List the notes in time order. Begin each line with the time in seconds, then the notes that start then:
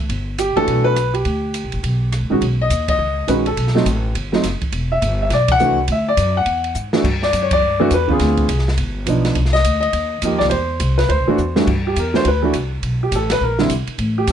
0.09 G1, kick, ride
0.38 G4, hi-hat pedal, ride
0.56 F#1 E3 A3 D4 F#4 A4, ride
0.67 B1, kick, ride
0.84 B4
0.96 cross-stick, hi-hat pedal, ride
1.14 G4, ride
1.25 D2, kick, ride
1.54 hi-hat pedal, ride
1.64 B1
1.72 A1, ride
1.83 B1, kick, ride
2.12 cross-stick, hi-hat pedal, ride
2.21 D2
2.30 A#1 D#3 G#3 C#4 F#4
2.41 B1, kick, ride
2.61 D#5
2.70 D#2, kick, hi-hat pedal, ride
2.88 D#5, kick, ride
2.98 C#2
3.27 A#1 D#3 G#3 C#4 F#4 B4, kick, hi-hat pedal, ride
3.46 A4, ride
3.57 B1, kick, ride
3.67 snare
3.75 F#3 A3 C4 D#4, snare
3.86 A1, kick, hi-hat pedal, ride
4.15 G1, kick, ride
4.32 F#3 A3 C4 D#4, snare
4.43 F#1, kick, snare, hi-hat pedal, ride
4.61 muted upright bass stroke, kick, ride
4.72 E1, kick, ride
4.92 E5
5.02 G1, kick, hi-hat pedal, ride
5.22 E5
5.30 B1 D5, kick, snare, ride
5.48 F#5, kick, ride
5.59 C2 E3 A3 D4 F#4, hi-hat pedal
5.88 D2, kick, ride
5.92 E5
6.08 D5
6.17 F#2, kick, hi-hat pedal, ride
6.37 F#5
6.46 E2, kick, ride
6.64 ride
6.75 G#2, hi-hat pedal
6.93 E3 A3 D4 F#4, snare
7.04 G2, kick, crash
7.23 D5, snare
7.33 F#2, kick, hi-hat pedal, ride
7.42 C#5
7.51 D5, kick, ride
7.61 G2
7.80 E3 A3 D4 F#4
7.91 E2 B4, kick, hi-hat pedal, ride
8.08 D3 B3 C4 F4, kick
8.12 G#4
8.19 D2, kick, snare, ride
8.37 kick, ride
8.48 C2, hi-hat pedal, ride
8.59 snare
8.68 snare
8.77 G1, kick, ride
9.06 B1 F3 B3 D4 D#4, kick, hi-hat pedal, ride
9.25 snare, ride
9.35 C2, kick, ride
9.45 snare
9.53 D#5, snare
9.64 D2, kick, hi-hat pedal, ride
9.80 D#5, ride
9.93 D#2, kick, ride
10.22 F2 F3 A#3 D#4 G4, kick, hi-hat pedal, ride
10.31 D#2
10.38 C2 D5, snare
10.50 E2 C5, kick, ride
10.80 C2, kick, hi-hat pedal, ride
10.98 B4, snare, ride
11.09 D2 C5, kick, ride
11.18 C2
11.27 A1 E3 A3 D4 F#4
11.38 E2, hi-hat pedal
11.56 G2 E3 A3 D4 F#4, snare
11.67 G2, kick, crash
11.87 G4
11.96 E2 A#4, hi-hat pedal, ride
12.14 E3 A3 D4 F#4 C5, snare
12.25 D2 B4, kick, ride
12.42 E3 A3 D4 F#4
12.53 C2, kick, hi-hat pedal, ride
12.82 B1, kick, ride
13.03 G4
13.11 A1 A4, kick, hi-hat pedal, ride
13.30 B4, snare, ride
13.41 A#1 A#4, kick
13.59 D3 G3 C4 E4, snare
13.69 C2, kick, hi-hat pedal, ride
13.87 muted upright bass stroke, ride
13.98 A1, kick, ride
14.18 G4
14.27 E2, kick, hi-hat pedal, ride